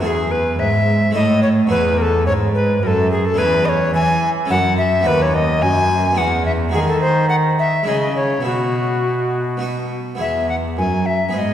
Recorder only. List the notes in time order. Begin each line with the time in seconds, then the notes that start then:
0.03 G#4 A4
0.31 B4
0.59 E5
1.15 D#5
1.43 C#5
1.70 B4
1.98 A4 A#4
2.26 C#5
2.55 B4
2.83 A4 A#4
3.11 G#4
3.25 A4
3.38 B4
3.65 C#5 D#5
3.94 G#5
4.50 F#5
4.78 E5
5.07 B4
5.22 C#5
5.34 D#5
5.62 G#5
6.17 F#5
6.46 E5
6.74 G#4
6.88 A4
7.01 C5
7.29 F#5
7.59 E5
7.89 D#5
8.16 C#5
8.46 F#4
10.21 E5
10.49 F#5
10.78 G#5
11.06 E5
11.34 E5
11.38 D#5